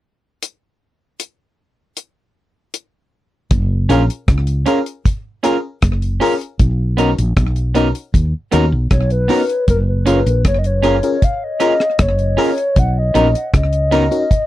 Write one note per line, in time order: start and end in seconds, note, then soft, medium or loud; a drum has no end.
0.43 closed hi-hat medium
1.20 closed hi-hat medium
1.97 closed hi-hat soft
2.74 closed hi-hat medium
3.51 3.87 F#1 loud
3.51 kick loud
3.51 closed hi-hat medium
3.89 4.08 A#1 medium
3.89 4.01 C#4 medium
3.89 4.03 C#4 medium
3.89 4.03 F4 medium
3.89 4.02 F4 medium
3.89 4.03 G#4 medium
3.89 4.03 A#4 medium
3.89 4.02 A#4 medium
3.89 closed hi-hat medium
4.10 closed hi-hat medium
4.28 4.64 C#2 medium
4.28 kick loud
4.28 cross-stick loud
4.28 closed hi-hat medium
4.47 closed hi-hat medium
4.66 4.78 C#4 medium
4.66 4.80 C#4 medium
4.66 4.78 F4 medium
4.66 4.80 F4 medium
4.66 4.80 G#4 medium
4.66 4.80 A#4 medium
4.66 4.79 A#4 medium
4.66 closed hi-hat medium
4.86 closed hi-hat medium
5.05 kick loud
5.05 closed hi-hat medium
5.43 5.55 C#4 medium
5.43 5.57 C#4 medium
5.43 5.57 F4 medium
5.43 5.56 F4 medium
5.43 5.57 G#4 medium
5.43 5.57 A#4 medium
5.43 5.56 A#4 medium
5.43 cross-stick medium
5.43 closed hi-hat medium
5.82 6.19 F#1 medium
5.82 kick medium
5.82 cross-stick medium
5.82 closed hi-hat medium
6.02 closed hi-hat soft
6.20 6.32 C#4 medium
6.20 6.34 C#4 medium
6.20 6.33 F4 medium
6.20 6.34 F4 medium
6.20 6.34 G#4 medium
6.20 6.35 A#4 loud
6.20 6.33 A#4 medium
6.20 open hi-hat medium
6.41 closed hi-hat soft
6.59 7.14 B1 loud
6.59 kick loud
6.59 closed hi-hat medium
6.97 7.09 B3 medium
6.97 7.11 C#4 medium
6.97 7.10 D#4 medium
6.97 7.11 D#4 medium
6.97 7.12 F#4 medium
6.97 7.12 A#4 medium
6.97 7.10 A#4 medium
6.97 closed hi-hat medium
7.18 7.36 A#1 medium
7.18 closed hi-hat medium
7.37 7.91 B1 medium
7.37 kick loud
7.37 cross-stick loud
7.37 closed hi-hat medium
7.56 closed hi-hat soft
7.74 7.87 B3 medium
7.74 7.88 C#4 medium
7.74 7.89 D#4 medium
7.74 7.87 D#4 medium
7.74 7.89 F#4 medium
7.74 7.89 A#4 medium
7.74 7.88 A#4 medium
7.74 closed hi-hat medium
7.95 closed hi-hat soft
8.14 8.32 D#2 medium
8.14 kick loud
8.14 closed hi-hat medium
8.52 8.71 D#2 medium
8.52 8.64 B3 medium
8.52 8.66 C#4 medium
8.52 8.64 D#4 medium
8.52 8.66 D#4 medium
8.52 8.66 F#4 medium
8.52 8.66 A#4 medium
8.52 8.65 A#4 medium
8.52 cross-stick medium
8.52 closed hi-hat medium
8.72 8.90 B1 medium
8.91 9.27 B1 medium
8.91 9.10 C#5 medium
8.91 kick medium
8.91 cross-stick medium
8.91 closed hi-hat medium
9.10 9.65 B4 loud
9.10 closed hi-hat soft
9.28 9.41 B3 medium
9.28 9.43 C#4 medium
9.28 9.41 D#4 medium
9.28 9.43 D#4 medium
9.28 9.43 F#4 medium
9.28 9.42 A#4 medium
9.28 9.43 A#4 loud
9.28 open hi-hat medium
9.49 closed hi-hat soft
9.68 10.23 F#1 loud
9.68 9.78 A#4 loud
9.68 kick loud
9.68 closed hi-hat medium
9.89 10.42 B4 medium
10.06 10.18 C#4 medium
10.06 10.20 C#4 medium
10.06 10.18 F4 medium
10.06 10.20 F4 medium
10.06 10.20 G#4 medium
10.06 10.20 A#4 medium
10.06 10.19 A#4 medium
10.06 closed hi-hat medium
10.26 10.44 A#1 medium
10.26 closed hi-hat medium
10.45 11.00 F#1 medium
10.45 10.58 C#5 medium
10.45 kick loud
10.45 cross-stick loud
10.45 closed hi-hat medium
10.59 10.68 D#5 medium
10.64 11.26 C#5 loud
10.64 closed hi-hat soft
10.83 10.95 C#4 medium
10.83 10.97 C#4 medium
10.83 10.95 F4 medium
10.83 10.97 F4 medium
10.83 10.97 G#4 medium
10.83 10.97 A#4 medium
10.83 10.96 A#4 medium
10.83 closed hi-hat medium
11.03 11.16 C#4 medium
11.03 11.16 F4 medium
11.03 11.16 G#4 medium
11.03 11.16 A#4 medium
11.03 closed hi-hat medium
11.22 11.35 F5 loud
11.22 kick loud
11.22 closed hi-hat medium
11.35 11.45 F5 medium
11.44 12.03 D#5 loud
11.60 11.72 C#4 medium
11.60 11.74 C#4 medium
11.60 11.74 F4 medium
11.60 11.73 F4 medium
11.60 11.74 G#4 medium
11.60 11.74 A#4 medium
11.60 11.73 A#4 medium
11.60 cross-stick medium
11.60 closed hi-hat medium
11.80 cross-stick medium
11.99 12.36 F#1 medium
11.99 12.80 C#5 loud
11.99 kick medium
11.99 cross-stick loud
11.99 closed hi-hat medium
12.19 closed hi-hat soft
12.37 12.49 C#4 medium
12.37 12.51 C#4 medium
12.37 12.51 F4 medium
12.37 12.50 F4 medium
12.37 12.51 G#4 medium
12.37 12.52 A#4 loud
12.37 12.50 A#4 medium
12.37 open hi-hat medium
12.58 closed hi-hat soft
12.76 13.13 B1 loud
12.76 12.97 F#5 loud
12.76 kick loud
12.76 closed hi-hat medium
12.98 13.51 D#5 loud
13.14 13.34 A#1 loud
13.14 13.27 B3 medium
13.14 13.28 C#4 medium
13.14 13.28 D#4 medium
13.14 13.27 D#4 medium
13.14 13.28 F#4 medium
13.14 13.29 A#4 medium
13.14 13.28 A#4 medium
13.14 closed hi-hat medium
13.35 closed hi-hat medium
13.53 14.08 C#2 medium
13.53 14.46 D#5 loud
13.53 kick loud
13.53 cross-stick loud
13.53 closed hi-hat medium
13.73 closed hi-hat soft
13.91 14.04 B3 medium
13.91 14.05 C#4 medium
13.91 14.05 D#4 medium
13.91 14.04 D#4 medium
13.91 14.05 F#4 medium
13.91 14.06 A#4 loud
13.91 14.05 A#4 medium
13.91 closed hi-hat medium
14.11 14.24 C#4 medium
14.11 14.24 D#4 medium
14.11 14.25 F#4 medium
14.11 14.25 A#4 medium
14.11 closed hi-hat soft
14.31 kick loud
14.31 closed hi-hat medium